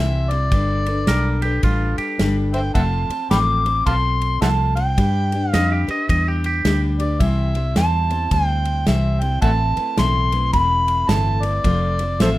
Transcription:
Already playing: C2 C3 E3 G3 C4 E4 C5 E5
0.31 G3 C4 E4 C5 D5, ride
0.52 G1 G3 D4 A4 B4, kick, ride
0.86 D4 A4 B4, ride
1.07 B1 G3 D4 A4 A#4 B4, snare, ride
1.42 D4 G4 A4 B4, ride
1.63 A1 G3 D4 F4 A4 B4, kick, ride
1.98 G4, muted fingered electric bass stroke, ride
2.19 G1 G3 D4 A4 B4, snare, ride
2.54 D4 A4 B4 C5 E5 G5, ride
2.74 F1 F3 A3 C4 F4 C5 E5 F#5 A5, kick, ride
3.09 C4 F4 C5, muted fingered electric bass stroke, ride
3.31 A1 F3 A3 C4 F4 C5 G5 B5 D6, snare, ride
3.65 C4 F4 C5, ride
3.86 B1 A3 C4 F4 C5 F5 A5 C6, kick, ride
4.22 ride
4.42 C2 F3 A3 C4 F4 C5 E5 F#5 A5, snare, ride
4.76 C4 F4 C5 G5, ride
4.97 G2 G3 D4 G4 B4, kick, ride
5.32 D4 G4 B4, ride
5.51 F2 G3 D4 G4 B4 D#5 F5, snare, ride
5.72 G4
5.87 D4 G4 B4 D#5, muted fingered electric bass stroke, ride
6.08 E2 G3 D4 G4 B4 D#5, kick, ride
6.28 G4
6.44 G4, ride
6.65 D2 G3 D4 G4 B4, snare, ride
6.99 D4 G4 B4 D5, ride
7.20 C2 C3 E3 G3 C4 E4 C5 E5, kick, ride
7.55 G3 C4 E4 C5, ride
7.75 E2 C3 E3 G3 C4 E4 C5 A5, snare, ride
8.10 G3 C4 E4 C5, ride
8.31 D2 G3 C4 E4 C5 G5, kick, ride
8.65 ride
8.87 C2 C3 E3 G3 C4 E4 C5 E5, snare, ride
9.21 G3 C4 E4 C5 G5, ride
9.42 A1 A2 E3 A3 C4 E4 B4 E5 F#5 A5, kick, ride
9.76 A3 C4 E4 B4, muted fingered electric bass stroke, ride
9.97 B1 A2 E3 A3 C4 E4 B4 C6, snare, ride
10.32 A3 C4 E4 B4, ride
10.53 E1 A3 C4 E4 B4 B5, kick, ride
10.88 ride
11.08 G1 A2 E3 A3 C4 E4 B4 A5, snare, ride
11.43 A3 C4 E4 B4 D5, ride
11.64 F1 F3 A3 C4 F4 C5, kick, ride
11.99 C4 F4 C5, ride
12.20 A1 F3 A3 C4 F4 A4 C5 E5, snare, ride

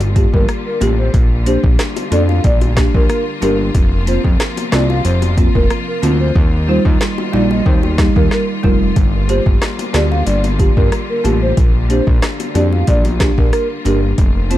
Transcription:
Already playing: G1 D3 G3 A#3 F4
0.01 closed hi-hat, high bongo
0.15 A#3 F4 G4, kick, closed hi-hat
0.34 G1 A#4, kick
0.49 cross-stick, closed hi-hat
0.66 A#4
0.81 A1 A#3 F4 G4, closed hi-hat, low bongo
0.99 C5
1.14 A#1, kick, closed hi-hat
1.46 A#3 D4 G4 C5, closed hi-hat
1.64 A#1, kick
1.79 cross-stick, snare, closed hi-hat
1.96 closed hi-hat, high bongo
2.11 F2 A#3 D4 A4 D5, closed hi-hat, high bongo, low bongo
2.29 F5, high bongo
2.44 A#1 D5, kick, closed hi-hat
2.61 closed hi-hat, high bongo
2.76 A#3 D4 G4, kick, cross-stick, snare, closed hi-hat
2.94 A#1 A#4, kick
3.09 A#4, cross-stick, closed hi-hat
3.41 G1 A#3 D4 G4 A#4, closed hi-hat, low bongo
3.75 F1 C3 F3, kick, closed hi-hat
4.06 A#3 C4 F4 C5, closed hi-hat
4.24 F1, kick
4.40 cross-stick, snare, closed hi-hat
4.57 closed hi-hat, high bongo
4.72 C2 A#3 C4 F4 D5, cross-stick, snare, closed hi-hat, high bongo, low bongo
4.90 F5, high bongo
5.05 F1 C5, closed hi-hat
5.22 closed hi-hat, high bongo
5.37 A#3 C4 F4, kick, closed hi-hat
5.55 F1 A#4, kick
5.70 cross-stick, closed hi-hat
5.88 A#4
6.02 D2 A#3 C4 F4, closed hi-hat, low bongo
6.20 C5
6.36 D#2 D#3 G3, kick
6.67 G3 D#4 F4 C5
6.85 D#2, kick
7.01 cross-stick, snare
7.18 high bongo
7.33 A#1 G3 D#4 F4 D5, high bongo, low bongo
7.51 D#5, high bongo
7.66 D#2 C5, kick
7.83 high bongo
7.98 G3 D#4 G4, kick, cross-stick, snare
8.16 D#2 A#4, kick
8.31 A#4, cross-stick, snare
8.63 F1 G3 D#4 F4 A#4, kick, low bongo
8.96 G1 D3 A#3, kick, closed hi-hat
9.28 A#3 F4 G4 C5, closed hi-hat
9.46 G1, kick
9.62 cross-stick, snare, closed hi-hat
9.79 closed hi-hat, high bongo
9.93 D2 A#3 F4 G4 D5, cross-stick, snare, closed hi-hat, high bongo, low bongo
10.11 F5, high bongo
10.27 G1 D5, closed hi-hat
10.44 closed hi-hat, high bongo
10.59 A#3 F4 G4, kick, closed hi-hat
10.76 G1 A#4, kick
10.92 cross-stick, closed hi-hat
11.09 A#4
11.24 A1 A#3 F4 G4, closed hi-hat, low bongo
11.42 C5
11.57 A#1 A#3, kick, closed hi-hat
11.89 A#3 D4 G4 C5, closed hi-hat
12.07 A#1, kick
12.22 cross-stick, snare, closed hi-hat
12.40 closed hi-hat, high bongo
12.54 F2 A#3 D4 G4 D5, closed hi-hat, high bongo, low bongo
12.72 F5, high bongo
12.87 A#1 D5, kick, closed hi-hat
13.05 closed hi-hat, high bongo
13.20 A#3 D4 G4, kick, cross-stick, snare, closed hi-hat
13.38 A#1 A#4, kick
13.53 A#4, cross-stick, closed hi-hat
13.85 G1 A#3 D4 G4 A#4, closed hi-hat, low bongo
14.18 F1 C3 F3 F4, kick, closed hi-hat
14.50 A#3 C4 F4 C5, closed hi-hat

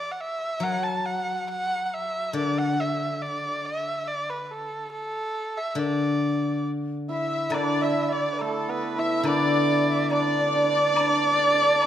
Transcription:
Already playing: D5
0.11 F#5
0.20 E5
0.60 F#3 F#5
0.83 A5
1.06 F#5
1.50 F#5
1.86 F#5
1.94 E5
2.33 D3 D5
2.58 F#5
2.80 E5
3.22 D5
3.65 E5
4.07 D5
4.30 B4
4.44 B4
4.51 A4
4.92 A4
5.57 E5
5.70 E5
5.75 D3 D5
7.08 E4 E5
7.43 E5
7.50 D3 D5, high woodblock
7.54 D4
7.81 E4 E5
8.09 D5
8.33 B4
8.38 A3 A4, high woodblock
8.68 B3 B4
8.95 E4 E5
8.99 E5
9.20 D3 E4
9.25 D4 D5, high woodblock
9.89 E5
10.10 D4 D5, high woodblock
10.20 D4
10.27 D4
10.33 D4
10.40 D4
10.47 D4
10.56 D4
10.64 D4
10.71 D4
10.78 D4
10.86 D4
10.93 D4, high woodblock
11.01 D4
11.10 D4
11.15 D4
11.24 D4
11.31 D4
11.38 D4
11.47 D4
11.54 D4
11.62 D4
11.67 D4
11.75 D4
11.82 high woodblock

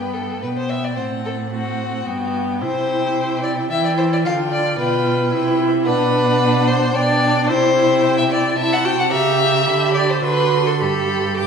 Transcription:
Already playing: G2 B3 G5
0.01 B4
0.14 A4
0.42 B2 B3 B4 G5
0.57 C5
0.70 E5
0.84 D5
0.97 A2 C4 C5 F#5
1.25 A4
1.51 C4 F#4 F#5
2.06 G2 B3 G5
2.61 C3 E4 C5 G5
3.43 D5
3.70 E3 E4 E5 G5
3.85 D5
3.98 C5
4.13 D5
4.24 D3 F4 F5 G5
4.52 D5
4.79 B2 F4 B4 G5
5.33 C3 E4 G5
5.86 B2 D4 B4 F#5
6.67 C5
6.95 B2 D4 D5 G5
7.48 C3 E4 C5 G5
8.18 E5
8.31 D5
8.58 C3 E4 E5 A5
8.73 F#5
8.85 F#4 G5
8.99 F#5
9.11 C#3 G4 E5 A#5
9.66 D3 G4 B5
9.94 D5
10.10 C5
10.23 D3 F#4 B4 C6
10.67 A4
10.80 G2 G4 A4 B5
11.37 G4 D6

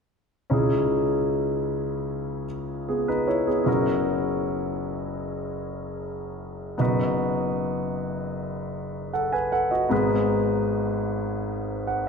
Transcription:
0.50 C#2 C#3 C#4 D#4 E4 G#4
2.89 B3 G#4
3.08 D#4 B4
3.28 E4 C#5
3.47 B3 G#4
3.64 F#1 F#2 C#4 E4 F#4
3.68 A#4
6.78 F#1 F#2 B3 D#4 F#4 B4
9.14 A4 F#5
9.33 B4 G#5
9.52 A4 F#5
9.71 F#4 D#5
9.89 G#1 G#2 B3 D#4 G#4 B4
11.87 F#5

